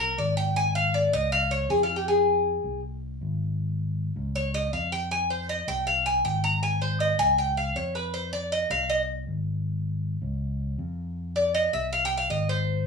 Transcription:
Already playing: fingered electric bass C2
0.00 cuban tres A#4
0.18 fingered electric bass G#1, cuban tres D5
0.37 cuban tres G5
0.56 cuban tres G#5
0.75 cuban tres F5
0.94 cuban tres D5
1.13 fingered electric bass C#2, cuban tres D#5
1.32 cuban tres F5
1.51 cuban tres C#5
1.69 fingered electric bass F2, cuban tres G#4
1.83 cuban tres F4
1.96 cuban tres G4
2.08 cuban tres G#4
2.64 fingered electric bass C2
3.21 fingered electric bass G#1
4.16 fingered electric bass C#2
4.35 cuban tres C#5
4.54 cuban tres D#5
4.73 fingered electric bass F2, cuban tres F5
4.92 cuban tres G5
5.11 cuban tres G#5
5.30 cuban tres C5
5.49 cuban tres D#5
5.67 fingered electric bass C2, cuban tres G5
5.87 cuban tres F5
6.06 cuban tres G#5
6.24 fingered electric bass G#1, cuban tres G5
6.44 cuban tres A#5
6.63 cuban tres G#5
6.82 cuban tres C5
7.00 cuban tres D#5
7.19 fingered electric bass C#2, cuban tres G#5
7.38 cuban tres G5
7.57 cuban tres F5
7.75 fingered electric bass F2, cuban tres C#5
7.95 cuban tres B4
8.14 cuban tres C5
8.33 cuban tres D5
8.52 cuban tres D#5
8.70 fingered electric bass C2, cuban tres F5
8.90 cuban tres D#5
9.27 fingered electric bass G#1
10.22 fingered electric bass C#2
10.78 fingered electric bass F2
11.36 cuban tres D5
11.54 cuban tres D#5
11.73 fingered electric bass C2, cuban tres E5
11.93 cuban tres F5
12.05 cuban tres G5
12.17 cuban tres F5
12.30 fingered electric bass G#1, cuban tres D#5
12.49 cuban tres C5

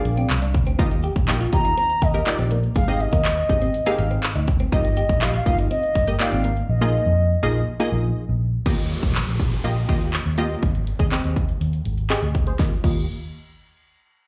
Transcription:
Already playing: synth stab A#3 D4 F4 G#4 D5, soft synth lead F5
0.05 fingered electric bass A#1, muted clean electric guitar stroke, closed hi-hat
0.17 clean electric guitar C4, closed hi-hat
0.30 fingered electric bass C2, clap, closed hi-hat
0.42 clean electric guitar D4, closed hi-hat
0.54 fingered electric bass D2, muted clean electric guitar stroke, kick, closed hi-hat
0.67 clean electric guitar C4, closed hi-hat
0.79 fingered electric bass D#2, synth stab A#3 D#4 F4 G4 D#5, clean electric guitar D#4, kick, closed hi-hat
0.91 muted clean electric guitar stroke, closed hi-hat
1.04 clean electric guitar G4, closed hi-hat
1.16 fingered electric bass A#1, kick, closed hi-hat
1.28 synth stab A#3 D#4 F4 G4 D#5, clap, closed hi-hat
1.41 clean electric guitar F4, closed hi-hat
1.52 fingered electric bass D#2, synth stab A#3 D#4 F4 G4 D#5, soft synth lead A#5, muted clean electric guitar stroke, kick, closed hi-hat
1.65 clean electric guitar D#4, closed hi-hat
1.77 clean electric guitar C4, soft synth lead A#5, closed hi-hat
1.90 closed hi-hat
2.02 fingered electric bass D#2, soft synth lead D#5, muted clean electric guitar stroke, kick, closed hi-hat
2.14 clean electric guitar A#3, synth stab G4 A#4, closed hi-hat
2.26 synth stab A#3 D#4 F4 G4 D5, muted clean electric guitar stroke, clap, closed hi-hat
2.39 fingered electric bass A#1, clean electric guitar C4, closed hi-hat
2.51 clean electric guitar A#3, closed hi-hat
2.63 closed hi-hat
2.76 fingered electric bass G#1, clean electric guitar G#3, soft synth lead F5, kick, closed hi-hat
2.88 synth stab C4 D#4 G4 G#4 D#5, closed hi-hat
3.00 soft synth lead D#5, muted clean electric guitar stroke, closed hi-hat
3.13 fingered electric bass D#2, clean electric guitar A#3, kick, closed hi-hat
3.25 clap, closed hi-hat
3.37 muted clean electric guitar stroke, closed hi-hat
3.49 fingered electric bass G#1, synth stab C4 D#4 G4 G#4 D#5, kick, closed hi-hat
3.62 clean electric guitar C4, closed hi-hat
3.74 closed hi-hat
3.86 clean electric guitar A#3, synth stab C4 D#4 G4 G#4 F5, closed hi-hat
3.99 fingered electric bass G#1, muted clean electric guitar stroke, closed hi-hat
4.11 clean electric guitar C4, closed hi-hat
4.23 clap, closed hi-hat
4.35 fingered electric bass D2, clean electric guitar D#4, closed hi-hat
4.48 muted clean electric guitar stroke, kick, closed hi-hat
4.60 clean electric guitar C4, closed hi-hat
4.72 fingered electric bass G1, synth stab A#3 D#4 F4 G4 D#5, clean electric guitar D#4, soft synth lead D#5, kick, closed hi-hat
4.85 muted clean electric guitar stroke, closed hi-hat
4.97 clean electric guitar G4, closed hi-hat
5.09 fingered electric bass A#1, kick, closed hi-hat
5.21 synth stab A#3 D#4 F4 G4 D#5, soft synth lead F5, clap, closed hi-hat
5.34 clean electric guitar F4, closed hi-hat
5.46 fingered electric bass G1, synth stab A#3 D#4 F4 G4 D#5, soft synth lead F5, muted clean electric guitar stroke, kick, closed hi-hat
5.58 clean electric guitar D#4, closed hi-hat
5.71 clean electric guitar C4, soft synth lead D#5, closed hi-hat
5.83 closed hi-hat
5.95 fingered electric bass G1, muted clean electric guitar stroke, kick, closed hi-hat
6.07 clean electric guitar A#3, synth stab G4 D#5, closed hi-hat
6.20 synth stab A#3 D#4 F4 G4 D5, soft synth lead F5, muted clean electric guitar stroke, clap, closed hi-hat
6.32 fingered electric bass G#1, clean electric guitar C4, closed hi-hat
6.44 clean electric guitar A#3, closed hi-hat
6.57 closed hi-hat
6.69 fingered electric bass A#1, soft synth lead D#5
6.81 synth stab A#3 D#4 F4 G#4 D#5
7.06 fingered electric bass F2
7.43 fingered electric bass A#1, synth stab A#3 D#4 F4 G#4 D#5
7.80 synth stab A#3 D#4 F4 G#4 D#5
7.92 fingered electric bass A#1
8.29 fingered electric bass A#1
8.66 fingered electric bass D#2, synth stab A#3 F4 G4 D#5, kick, closed hi-hat, crash, downlifter
8.78 closed hi-hat
8.91 closed hi-hat
9.03 fingered electric bass A#1, kick, closed hi-hat
9.15 clap, closed hi-hat
9.27 fingered electric bass A#1, closed hi-hat
9.40 kick, closed hi-hat
9.52 closed hi-hat
9.64 fingered electric bass A#1, synth stab A#3 F4 G4 D#5, closed hi-hat
9.76 closed hi-hat
9.89 fingered electric bass D#2, synth stab A#3 F4 G4 D#5, kick, closed hi-hat
10.01 closed hi-hat
10.13 clap, closed hi-hat
10.26 fingered electric bass D#2, closed hi-hat
10.38 synth stab A#3 F4 G4 D#5, closed hi-hat
10.50 closed hi-hat
10.63 fingered electric bass G#1, kick, closed hi-hat
10.75 closed hi-hat
10.87 closed hi-hat
10.99 fingered electric bass D#2, synth stab G#4 D#5, kick, closed hi-hat
11.12 synth stab C4 G4 G#4 D#5, clap, closed hi-hat
11.24 fingered electric bass D#2, closed hi-hat
11.36 kick, closed hi-hat
11.49 closed hi-hat
11.61 fingered electric bass D#2, closed hi-hat
11.73 closed hi-hat
11.85 fingered electric bass G#1, closed hi-hat
11.98 closed hi-hat
12.10 synth stab C4 G4 G#4 D#5, clap, closed hi-hat
12.22 fingered electric bass D2, closed hi-hat
12.34 kick, closed hi-hat
12.47 synth stab G#4 C5, closed hi-hat
12.59 fingered electric bass D#2, synth stab A#3 F4 G4 D#5, kick, snare
12.84 fingered electric bass D#2, synth stab A#3 F4 G4 D#5, kick, crash

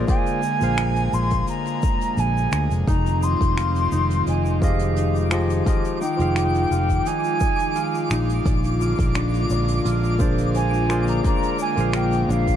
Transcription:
Already playing: analog synth pad D3 G#3 A#3
0.07 tine electric piano A#3 F4 G#4 C5 D5, analog synth pad G#5, flute G#5, kick, closed hi-hat, shaker
0.26 closed hi-hat, shaker
0.43 shaker
0.59 fingered electric bass A#1, tine electric piano A#3 F4 G#4, closed hi-hat, shaker
0.63 tine electric piano C5 F5
0.78 finger snap, closed hi-hat, shaker
0.96 closed hi-hat, shaker
1.13 fingered electric bass A#1, flute C6, shaker
1.31 kick, closed hi-hat, shaker
1.47 flute A#5, closed hi-hat, shaker
1.65 closed hi-hat, shaker
1.82 kick, shaker
2.01 closed hi-hat, shaker
2.17 fingered electric bass A#1, flute G#5, closed hi-hat, shaker
2.37 shaker
2.52 fingered electric bass D2, finger snap, shaker
2.70 fingered electric bass F1, closed hi-hat, shaker
2.86 fingered electric bass F1, analog synth pad D#3 C4 F4, harp D#4, flute A#5, synth texture D6, kick, closed hi-hat, shaker
3.06 closed hi-hat, shaker
3.22 harp D#5, flute C6, shaker
3.41 fingered electric bass F1, kick, closed hi-hat, shaker
3.57 harp F4, finger snap, closed hi-hat, shaker
3.76 closed hi-hat, shaker
3.92 fingered electric bass F1, harp D#4, shaker
4.10 closed hi-hat, shaker
4.27 fingered electric bass F1, harp D#5, flute G#5, closed hi-hat, shaker
4.46 shaker
4.61 tine electric piano F3 F4 G4 G#4 D#5, harp F4, flute F5, kick, shaker
4.79 closed hi-hat, shaker
4.96 harp D#4, closed hi-hat, shaker
5.15 shaker
5.31 tine electric piano F3 F4 G4 G#4 D#5, harp D#5, finger snap, shaker
5.50 closed hi-hat, shaker
5.66 tine electric piano F3 F4 G4 G#4 D#5, harp F4, kick, closed hi-hat, shaker
5.85 closed hi-hat, shaker
6.01 harp D#4, flute G5, shaker
6.17 fingered electric bass F1, tine electric piano F3 D#4 F4 G#4, closed hi-hat, shaker
6.22 tine electric piano F5
6.36 harp D#5, finger snap, closed hi-hat, shaker
6.54 closed hi-hat, shaker
6.71 fingered electric bass F1, harp F4, shaker
6.90 kick, closed hi-hat, shaker
7.06 harp D#4, flute G#5, closed hi-hat, shaker
7.24 shaker
7.40 harp D#5, kick, shaker
7.59 closed hi-hat, shaker
7.75 harp F4, closed hi-hat, shaker
7.95 shaker
8.11 fingered electric bass A#1, harp D#4, finger snap, shaker
8.29 closed hi-hat, shaker
8.45 fingered electric bass A#1, analog synth pad D3 G#3 A#3, harp D5, kick, closed hi-hat, shaker
8.64 closed hi-hat, shaker
8.81 harp F4, shaker
8.99 fingered electric bass A#1, kick, closed hi-hat, shaker
9.14 harp D4, finger snap, closed hi-hat, shaker
9.34 closed hi-hat, shaker
9.50 fingered electric bass A#1, harp D5, shaker
9.68 closed hi-hat, shaker
9.85 fingered electric bass A#1, harp F4, closed hi-hat, shaker
10.04 shaker
10.19 tine electric piano A#3 F4 G#4 C5 D5, harp D4, kick, shaker
10.38 closed hi-hat, shaker
10.54 harp D5, flute G#5, closed hi-hat, shaker
10.73 shaker
10.89 tine electric piano A#3 F4 G#4 C5 D5, harp F4, finger snap, shaker
11.07 flute A#5, closed hi-hat, shaker
11.23 tine electric piano A#3 F4 G#4 C5 D5, harp D4, flute A#5, kick, closed hi-hat, shaker
11.43 closed hi-hat, shaker
11.59 harp D5, flute G#5, shaker
11.76 fingered electric bass A#1, tine electric piano A#3 F4 G#4 C5, closed hi-hat, shaker
11.81 tine electric piano F5
11.93 harp F4, flute G5, finger snap, closed hi-hat, shaker
12.12 closed hi-hat, shaker
12.24 flute G5
12.29 fingered electric bass A#1, harp D4, flute F5, shaker
12.48 kick, closed hi-hat, shaker

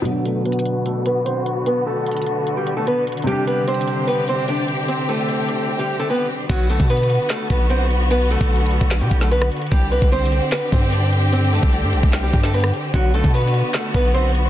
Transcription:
0.02 felt piano B2 F#3, string section D3 B3 F#4, closed hi-hat
0.06 steel-string acoustic guitar F#3 F#4, felt piano D4 F#4
0.25 steel-string acoustic guitar A3 A4, closed hi-hat
0.45 steel-string acoustic guitar B3 B4, closed hi-hat
0.52 closed hi-hat
0.59 closed hi-hat
0.66 closed hi-hat
0.86 steel-string acoustic guitar A3 A4, closed hi-hat
1.06 steel-string acoustic guitar B3 B4, closed hi-hat
1.25 steel-string acoustic guitar C4 C5, closed hi-hat
1.46 closed hi-hat
1.66 steel-string acoustic guitar B3 B4, closed hi-hat
1.86 steel-string acoustic guitar A3 A4
2.07 closed hi-hat
2.12 closed hi-hat
2.17 closed hi-hat
2.22 closed hi-hat
2.27 closed hi-hat
2.47 closed hi-hat
2.57 steel-string acoustic guitar G3 G4
2.67 closed hi-hat
2.77 steel-string acoustic guitar A3 A4
2.87 steel-string acoustic guitar B3 B4, closed hi-hat
3.07 closed hi-hat
3.12 closed hi-hat
3.17 closed hi-hat
3.22 felt piano C3 G3, closed hi-hat
3.27 steel-string acoustic guitar G3 G4, string section C4 G4, felt piano D4, closed hi-hat
3.32 felt piano G4
3.47 steel-string acoustic guitar B3 B4, closed hi-hat
3.67 steel-string acoustic guitar C4 C5, closed hi-hat
3.74 closed hi-hat
3.81 closed hi-hat
3.88 closed hi-hat
4.07 steel-string acoustic guitar B3 B4, closed hi-hat
4.28 steel-string acoustic guitar C4 C5, closed hi-hat
4.48 steel-string acoustic guitar D4 D5, closed hi-hat
4.68 closed hi-hat
4.88 steel-string acoustic guitar C4 C5, closed hi-hat
5.09 steel-string acoustic guitar A3 A4
5.29 closed hi-hat
5.49 closed hi-hat
5.79 steel-string acoustic guitar G3 G4
5.99 steel-string acoustic guitar A3 A4
6.10 steel-string acoustic guitar B3 B4
6.50 808-style bass B1, string section D3 B3 F#4, steel-string acoustic guitar F#3 F#4, kick, closed hi-hat, crash
6.70 steel-string acoustic guitar A3 A4, closed hi-hat
6.80 808-style bass B2, kick
6.90 steel-string acoustic guitar B3 B4, closed hi-hat
6.97 closed hi-hat
7.03 closed hi-hat
7.10 closed hi-hat
7.30 steel-string acoustic guitar A3 A4, snare, clap, closed hi-hat
7.50 808-style bass B1, steel-string acoustic guitar B3 B4, kick, closed hi-hat
7.70 steel-string acoustic guitar C4 C5, closed hi-hat
7.91 closed hi-hat
8.11 steel-string acoustic guitar B3 B4, closed hi-hat
8.31 steel-string acoustic guitar A3 A4, open hi-hat
8.41 808-style bass B1, kick
8.51 closed hi-hat
8.56 closed hi-hat
8.61 closed hi-hat
8.66 closed hi-hat
8.71 closed hi-hat
8.81 808-style bass B1, kick
8.91 snare, clap, closed hi-hat
9.01 808-style bass B2, steel-string acoustic guitar G3 G4
9.11 808-style bass B1, kick, closed hi-hat
9.21 steel-string acoustic guitar A3 A4, snare
9.31 steel-string acoustic guitar B3 B4, closed hi-hat
9.42 cross-stick
9.52 closed hi-hat
9.57 closed hi-hat
9.62 closed hi-hat
9.67 closed hi-hat
9.71 808-style bass C2, steel-string acoustic guitar G3 G4, string section C4 G4, kick, closed hi-hat
9.91 steel-string acoustic guitar B3 B4, closed hi-hat
10.02 808-style bass C2, kick
10.12 steel-string acoustic guitar C4 C5, closed hi-hat
10.19 closed hi-hat
10.25 closed hi-hat
10.32 closed hi-hat
10.52 steel-string acoustic guitar B3 B4, snare, clap, closed hi-hat
10.72 808-style bass G2, steel-string acoustic guitar C4 C5, kick, closed hi-hat
10.93 steel-string acoustic guitar D4 D5, closed hi-hat
11.13 closed hi-hat
11.32 steel-string acoustic guitar C4 C5, closed hi-hat
11.53 steel-string acoustic guitar A3 A4, open hi-hat
11.63 808-style bass C2, kick
11.73 closed hi-hat
11.83 808-style bass G2
11.93 808-style bass C2, closed hi-hat
12.03 808-style bass C2, kick
12.13 snare, clap, closed hi-hat
12.23 steel-string acoustic guitar G3 G4
12.33 808-style bass G2, kick, closed hi-hat
12.40 steel-string acoustic guitar A4, snare, closed hi-hat
12.45 steel-string acoustic guitar A3, closed hi-hat
12.54 steel-string acoustic guitar B3 B4, closed hi-hat
12.60 cross-stick, closed hi-hat
12.67 closed hi-hat
12.74 closed hi-hat
12.94 808-style bass B1, steel-string acoustic guitar F#3 F#4, string section B3 F#4, kick, closed hi-hat
13.14 steel-string acoustic guitar A3 A4, closed hi-hat
13.24 808-style bass B2, kick
13.34 steel-string acoustic guitar B3 B4, closed hi-hat
13.41 closed hi-hat
13.48 closed hi-hat
13.54 closed hi-hat
13.74 steel-string acoustic guitar A3 A4, snare, clap, closed hi-hat
13.94 808-style bass B1, steel-string acoustic guitar B3 B4, kick, closed hi-hat
14.14 steel-string acoustic guitar C4 C5, closed hi-hat
14.35 closed hi-hat

